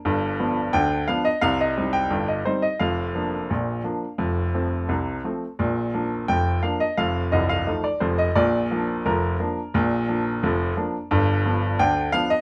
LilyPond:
<<
  \new Staff \with { instrumentName = "Grand piano" } { \time 2/4 \key bes \major \tempo 4 = 87 r4 g''8 f''16 ees''16 | f''16 ees''8 g''8 ees''16 c''16 ees''16 | f''2~ | f''4 r4 |
r4 g''8 f''16 ees''16 | f''8 ees''16 f''8 d''16 c''16 ees''16 | d''4 bes'4~ | bes'2 |
r4 g''8 f''16 ees''16 | }
  \new Staff \with { instrumentName = "Grand piano" } { \clef bass \time 2/4 \key bes \major <g,, g,>8 <f b d'>8 <d, d>8 <f b d'>8 | <c, c>8 <g c' ees'>8 <g,, g,>8 <g c' ees'>8 | <f,, f,>8 <f bes d'>8 <bes,, bes,>8 <f bes d'>8 | <f,, f,>8 <f a c'>8 <c, c>8 <f a c'>8 |
<bes,, bes,>8 <f bes d'>8 <f,, f,>8 <f bes d'>8 | <f,, f,>8 <c,, c,>8 <f a ees'>8 <f,, f,>8 | <bes,, bes,>8 <f bes d'>8 <f,, f,>8 <f bes d'>8 | <bes,, bes,>8 <f bes d'>8 <f,, f,>8 <f bes d'>8 |
<g,, g,>8 <f b d'>8 <d, d>8 <f b d'>8 | }
>>